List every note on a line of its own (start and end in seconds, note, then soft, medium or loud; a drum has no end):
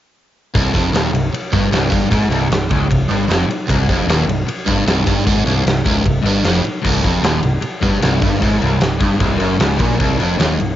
0.54 0.73 C1 loud
0.54 0.73 C2 loud
0.54 kick loud
0.54 ride medium
0.74 0.92 F1 medium
0.74 0.93 F2 loud
0.74 kick medium
0.74 snare soft
0.74 ride medium
0.92 1.11 D#1 medium
0.92 1.12 D#2 loud
0.92 snare loud
0.92 ride medium
1.11 1.30 C1 medium
1.11 1.29 C2 medium
1.11 ride medium
1.32 muted picked electric bass stroke soft
1.32 muted overdriven electric guitar stroke medium
1.32 muted distorted electric guitar stroke medium
1.32 ride loud
1.53 1.71 G1 loud
1.53 1.71 G2 medium
1.53 kick loud
1.53 ride medium
1.71 1.90 C1 medium
1.71 1.89 C2 medium
1.71 snare loud
1.71 ride loud
1.90 2.10 G1 medium
1.90 2.10 G2 loud
1.90 kick loud
1.90 ride medium
2.10 2.29 G#1 medium
2.10 2.30 G#2 loud
2.10 kick loud
2.10 ride loud
2.29 2.48 C1 loud
2.29 2.48 C2 loud
2.29 ride medium
2.49 2.68 C1 medium
2.49 2.66 C2 medium
2.49 snare loud
2.49 ride medium
2.70 2.89 C#1 medium
2.70 2.89 C#2 medium
2.70 kick loud
2.70 ride medium
2.90 3.08 C1 medium
2.90 3.05 C2 medium
2.90 kick medium
2.90 ride medium
3.09 3.27 G1 medium
3.09 3.29 G2 medium
3.09 ride medium
3.29 3.47 F1 medium
3.29 3.48 F2 medium
3.29 snare loud
3.29 ride medium
3.48 muted overdriven electric guitar stroke medium
3.48 muted picked electric bass stroke soft
3.48 muted distorted electric guitar stroke medium
3.48 ride medium
3.69 3.87 C1 medium
3.69 3.88 C2 loud
3.69 kick loud
3.69 ride medium
3.89 4.05 F1 medium
3.89 4.07 F2 loud
3.89 kick loud
3.89 snare soft
3.89 ride medium
4.06 4.25 D#1 medium
4.06 4.26 D#2 loud
4.06 ride medium
4.10 snare loud
4.26 4.45 C1 medium
4.26 4.43 C2 medium
4.26 ride medium
4.46 muted picked electric bass stroke soft
4.46 muted distorted electric guitar stroke medium
4.46 muted overdriven electric guitar stroke medium
4.46 ride loud
4.66 4.85 G1 loud
4.66 4.85 G2 medium
4.66 kick medium
4.66 ride medium
4.85 5.04 C1 loud
4.85 5.04 C2 loud
4.85 snare loud
4.85 ride medium
5.04 5.25 G1 medium
5.04 5.24 G2 loud
5.04 kick loud
5.04 ride medium
5.24 5.44 G#1 medium
5.24 5.44 G#2 loud
5.24 kick loud
5.24 ride loud
5.44 5.63 C1 loud
5.44 5.64 C2 medium
5.44 snare soft
5.44 ride medium
5.64 5.83 C1 medium
5.64 5.81 C2 medium
5.64 snare loud
5.64 ride loud
5.84 6.04 C#1 medium
5.84 6.04 C#2 loud
5.84 kick loud
5.84 ride medium
6.05 6.23 C1 medium
6.05 6.21 C2 medium
6.05 kick medium
6.05 ride medium
6.22 6.42 G1 medium
6.22 6.42 G2 medium
6.22 ride medium
6.26 6.44 G2 medium
6.43 6.62 F1 medium
6.43 6.62 F2 medium
6.43 snare loud
6.43 ride medium
6.63 muted distorted electric guitar stroke medium
6.63 muted picked electric bass stroke soft
6.63 ride medium
6.67 muted overdriven electric guitar stroke medium
6.82 7.03 C1 medium
6.82 7.01 C2 loud
6.82 kick loud
6.82 crash medium
6.87 7.04 C2 loud
7.02 7.21 F1 medium
7.02 7.22 F2 loud
7.02 kick medium
7.02 ride medium
7.22 7.41 D#1 medium
7.22 7.41 D#2 loud
7.22 snare loud
7.22 ride medium
7.42 7.61 C1 medium
7.42 7.58 C2 medium
7.42 ride medium
7.61 muted picked electric bass stroke soft
7.61 muted distorted electric guitar stroke medium
7.61 muted overdriven electric guitar stroke medium
7.61 ride medium
7.81 8.01 G1 medium
7.81 8.00 G2 medium
7.81 kick loud
7.81 ride medium
8.00 8.21 C1 loud
8.00 8.20 C2 medium
8.00 snare loud
8.00 ride medium
8.21 8.40 G1 medium
8.21 8.39 G2 loud
8.21 kick loud
8.21 ride medium
8.40 8.60 G#1 medium
8.40 8.58 G#2 loud
8.40 kick loud
8.40 ride loud
8.59 8.79 C1 medium
8.59 8.77 C2 loud
8.59 ride medium
8.63 8.81 C2 medium
8.78 8.99 C1 medium
8.78 8.95 C2 medium
8.78 snare loud
8.78 ride loud
8.99 9.19 G1 medium
8.99 9.17 G2 loud
8.99 kick loud
8.99 ride medium
9.18 9.38 C1 medium
9.18 9.37 C2 loud
9.18 kick loud
9.18 ride medium
9.38 9.58 F#1 loud
9.38 9.57 F#2 loud
9.38 ride medium
9.58 9.78 C#1 medium
9.58 9.77 C#2 medium
9.58 snare loud
9.58 ride medium
9.78 9.98 A#1 loud
9.78 9.97 A#2 loud
9.78 kick loud
9.78 ride medium
9.97 10.18 C1 medium
9.97 10.17 C2 loud
9.97 kick loud
9.97 ride medium
10.18 10.38 F1 medium
10.18 10.37 F2 loud
10.18 ride medium
10.37 10.57 D#1 medium
10.37 10.57 D#2 loud
10.37 snare loud
10.37 ride medium
10.58 10.76 C1 medium
10.58 10.74 C2 medium
10.58 ride medium